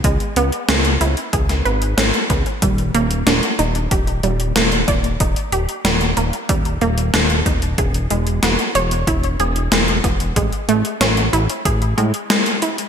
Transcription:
0.04 0.19 C#2 loud
0.04 0.35 G#3 medium
0.04 kick loud
0.04 closed hi-hat medium
0.20 closed hi-hat soft
0.36 0.51 C#2 medium
0.36 0.50 B3 loud
0.36 closed hi-hat medium
0.52 closed hi-hat soft
0.69 0.98 C#2 medium
0.69 0.91 C#4 medium
0.69 snare loud
0.69 closed hi-hat medium
0.85 closed hi-hat soft
1.01 1.16 C#2 loud
1.01 1.23 E4 medium
1.01 closed hi-hat medium
1.17 closed hi-hat soft
1.33 1.62 C#2 medium
1.33 1.55 G#4 medium
1.33 kick loud
1.33 closed hi-hat medium
1.49 snare soft
1.49 closed hi-hat soft
1.65 1.95 G#1 medium
1.65 1.88 B4 medium
1.65 closed hi-hat soft
1.82 closed hi-hat soft
1.98 2.12 G#1 medium
1.98 2.11 C#4 medium
1.98 snare loud
1.98 closed hi-hat medium
2.14 closed hi-hat soft
2.30 2.45 C#2 medium
2.30 2.61 B3 medium
2.30 kick loud
2.30 closed hi-hat medium
2.46 closed hi-hat soft
2.62 2.91 D#1 medium
2.62 2.93 G3 medium
2.62 kick loud
2.62 closed hi-hat medium
2.78 closed hi-hat soft
2.94 3.24 D#1 medium
2.94 3.08 A#3 loud
2.94 closed hi-hat medium
3.11 closed hi-hat soft
3.27 3.41 D#1 medium
3.27 3.49 D4 medium
3.27 snare loud
3.27 closed hi-hat medium
3.43 closed hi-hat soft
3.59 3.88 D#1 medium
3.59 3.81 D#4 medium
3.59 closed hi-hat medium
3.75 closed hi-hat soft
3.91 4.20 D#1 medium
3.91 4.14 G4 medium
3.91 kick loud
3.91 closed hi-hat medium
4.07 closed hi-hat soft
4.23 4.53 D#1 loud
4.23 4.54 G3 medium
4.23 closed hi-hat soft
4.40 closed hi-hat soft
4.56 4.85 D#1 medium
4.56 4.78 A#3 medium
4.56 snare loud
4.56 closed hi-hat medium
4.72 closed hi-hat soft
4.88 5.17 D#1 medium
4.88 5.10 D5 loud
4.88 kick loud
4.88 closed hi-hat medium
5.04 closed hi-hat soft
5.20 5.35 D#1 loud
5.20 5.43 D#4 medium
5.20 kick loud
5.20 closed hi-hat medium
5.36 closed hi-hat soft
5.52 5.67 D#1 medium
5.52 5.75 G4 medium
5.52 closed hi-hat medium
5.69 closed hi-hat soft
5.85 6.14 D#1 medium
5.85 5.98 G3 medium
5.85 snare loud
5.85 closed hi-hat medium
6.01 closed hi-hat soft
6.17 6.32 D#1 medium
6.17 6.30 A#3 medium
6.17 closed hi-hat medium
6.33 closed hi-hat soft
6.49 6.78 D#1 medium
6.49 6.80 G3 loud
6.49 kick loud
6.49 closed hi-hat medium
6.65 closed hi-hat soft
6.81 7.11 D#1 medium
6.81 6.95 A#3 loud
6.81 closed hi-hat soft
6.98 closed hi-hat soft
7.14 7.43 D#1 medium
7.14 7.36 D4 medium
7.14 snare loud
7.14 closed hi-hat medium
7.30 closed hi-hat soft
7.46 7.75 D#1 medium
7.46 7.68 D#4 medium
7.46 kick loud
7.46 closed hi-hat medium
7.62 closed hi-hat soft
7.78 8.07 E1 loud
7.78 8.01 G#4 medium
7.78 kick loud
7.78 closed hi-hat medium
7.94 closed hi-hat soft
8.10 8.40 E1 medium
8.10 8.41 G#3 medium
8.10 closed hi-hat medium
8.27 closed hi-hat soft
8.43 8.58 E1 medium
8.43 8.65 B3 medium
8.43 snare loud
8.43 closed hi-hat medium
8.59 closed hi-hat soft
8.75 9.04 E1 medium
8.75 8.98 C#5 loud
8.75 closed hi-hat medium
8.91 closed hi-hat soft
9.07 9.36 E1 medium
9.07 9.30 E4 medium
9.07 kick loud
9.07 closed hi-hat medium
9.23 closed hi-hat soft
9.40 9.69 E1 medium
9.40 9.62 G#4 medium
9.40 closed hi-hat soft
9.56 closed hi-hat soft
9.72 10.01 E1 medium
9.72 9.85 G#3 medium
9.72 snare loud
9.72 closed hi-hat medium
9.88 closed hi-hat soft
10.04 10.33 E1 medium
10.04 10.18 B3 medium
10.04 kick medium
10.04 closed hi-hat medium
10.20 closed hi-hat soft
10.36 10.51 A1 loud
10.36 10.67 G#3 loud
10.36 kick loud
10.36 closed hi-hat medium
10.53 closed hi-hat soft
10.68 10.83 A1 medium
10.68 10.82 A3 loud
10.68 closed hi-hat medium
10.85 closed hi-hat soft
11.01 11.30 A1 medium
11.01 11.23 C#4 medium
11.01 snare loud
11.01 closed hi-hat medium
11.17 closed hi-hat soft
11.33 11.48 A1 medium
11.33 11.55 E4 medium
11.33 closed hi-hat medium
11.50 closed hi-hat soft
11.65 11.95 A1 medium
11.65 11.88 G#4 medium
11.65 kick loud
11.65 closed hi-hat medium
11.82 closed hi-hat soft
11.98 12.12 A2 loud
11.98 12.20 G#3 medium
11.98 closed hi-hat soft
12.14 closed hi-hat soft
12.30 12.61 G#3 loud
12.30 snare loud
12.30 closed hi-hat loud
12.46 closed hi-hat soft
12.62 12.85 E4 medium
12.62 closed hi-hat medium
12.78 closed hi-hat soft

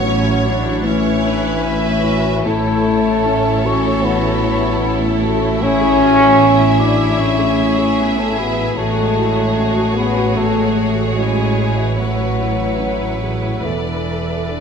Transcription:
0.00 2.42 A1 medium
0.00 0.80 A2 medium
0.00 2.42 A2 medium
0.00 0.81 F#3 medium
0.00 0.43 C#4 medium
0.00 0.24 E4 medium
0.00 1.03 B4 medium
0.00 0.80 C#5 medium
0.00 0.82 C#5 medium
0.00 0.57 F#5 medium
0.04 0.36 C#4 medium
0.04 0.87 E4 medium
0.24 0.56 E4 medium
0.45 0.84 D4 medium
0.45 0.64 F#4 soft
0.63 0.95 E4 medium
0.83 2.42 A2 medium
0.83 2.46 E3 medium
0.83 1.24 C#4 medium
0.83 1.63 E4 medium
0.83 1.61 C#5 medium
0.83 1.22 C#5 medium
0.83 2.48 E5 medium
1.03 1.35 B4 medium
1.22 1.66 D4 medium
1.22 1.54 E4 soft
1.22 1.63 B4 medium
1.42 1.75 B4 soft
1.63 1.96 C#4 soft
1.63 2.44 C#4 medium
1.63 2.06 E4 medium
1.63 2.46 B4 medium
1.63 2.46 E5 medium
1.84 2.17 E4 soft
2.04 2.46 F#4 medium
2.04 2.25 F#4 soft
2.26 2.46 E4 soft
2.45 8.74 A1 medium
2.45 4.00 A2 medium
2.45 8.74 A2 medium
2.45 3.64 A3 loud
2.45 8.74 E4 medium
2.45 3.28 E4 medium
2.45 5.57 A4 medium
2.45 5.57 C#5 medium
2.45 3.68 A5 medium
2.67 2.98 A4 medium
2.87 3.18 E4 soft
3.07 3.37 A4 soft
3.25 3.56 C#4 soft
3.25 3.67 C#4 medium
3.45 3.76 E4 medium
3.64 4.04 C#4 medium
3.64 3.84 F#4 soft
3.64 4.85 F#4 medium
3.64 4.07 C#6 medium
3.84 4.15 E4 soft
4.03 4.35 E3 medium
4.03 5.05 B3 medium
4.03 4.93 B5 medium
4.23 4.55 A4 medium
4.43 4.75 E4 medium
4.63 4.95 A4 soft
4.83 5.15 C#4 soft
4.83 5.25 E4 medium
5.01 5.34 E4 soft
5.22 5.60 A3 medium
5.22 5.42 F#4 soft
5.22 5.62 F#4 medium
5.22 5.64 A5 medium
5.41 5.61 E4 soft
5.61 7.15 A2 medium
5.61 6.79 C#4 loud
5.61 6.03 E4 medium
5.61 11.95 G#4 medium
5.61 8.74 E5 medium
5.61 6.81 C#6 medium
5.81 6.12 G#4 medium
6.00 6.31 E4 medium
6.00 6.40 F#4 medium
6.19 6.51 G#4 soft
6.38 6.70 B3 soft
6.38 8.47 E4 medium
6.58 6.90 E4 soft
6.78 7.19 D4 medium
6.78 6.98 F#4 soft
6.78 7.21 D6 medium
6.98 7.30 E4 medium
7.18 8.74 A2 medium
7.18 8.18 C#4 medium
7.18 8.21 C#6 medium
7.38 7.70 G#4 soft
7.58 7.90 E4 medium
7.78 8.10 G#4 soft
7.99 8.31 B3 medium
8.18 8.38 A3 medium
8.18 8.51 E4 soft
8.18 8.40 A5 medium
8.38 8.78 B3 medium
8.38 8.58 F#4 soft
8.38 8.79 B5 medium
8.59 8.78 E4 soft
8.76 13.60 A1 medium
8.76 10.33 A2 medium
8.76 13.60 A2 medium
8.76 9.94 A3 medium
8.76 9.15 F#4 medium
8.76 11.95 F#4 medium
8.76 13.64 C#5 medium
8.76 9.97 A5 medium
8.98 9.30 G#3 medium
9.18 9.59 E4 medium
9.18 9.49 F#4 soft
9.37 9.69 G#3 soft
9.57 9.89 C#4 soft
9.57 9.98 F#4 medium
9.76 10.09 F#4 soft
9.94 10.36 B3 medium
9.94 10.17 G#4 soft
9.94 10.38 G#4 medium
9.94 10.39 B5 medium
10.17 10.49 F#4 soft
10.35 11.94 A2 soft
10.35 11.16 A3 medium
10.35 10.79 A4 medium
10.35 10.90 A5 medium
10.57 10.89 G#3 soft
10.76 11.09 F#4 soft
10.76 11.20 F#4 medium
10.97 11.29 G#4 soft
11.16 11.77 G#3 medium
11.16 11.50 C#4 soft
11.16 11.99 E4 medium
11.16 11.79 G#5 medium
11.38 11.70 F#4 soft
11.58 11.78 G#4 soft
11.77 11.97 E3 medium
11.77 11.98 F#4 soft
11.77 12.01 E5 medium
11.97 13.60 A2 soft
11.97 13.63 F#3 medium
11.97 13.61 E4 medium
11.97 12.81 F#4 medium
11.97 14.60 B4 soft
11.97 13.66 F#5 medium
12.17 12.50 B4 soft
12.38 12.71 E4 soft
12.59 12.92 B4 soft
12.78 13.12 C#4 soft
12.78 13.22 E4 soft
13.00 13.34 E4 soft
13.21 13.43 F#4 soft
13.21 13.65 G#4 soft
13.43 13.64 E4 soft
13.63 14.60 E1 soft
13.63 14.60 E2 soft
13.63 14.60 E3 medium
13.63 14.60 A4 medium
13.63 14.60 A4 soft
13.63 14.60 D5 soft
13.63 14.60 E5 soft
13.85 14.19 B4 soft
14.07 14.40 A4 soft
14.28 14.60 B4 soft
14.48 14.60 D4 soft

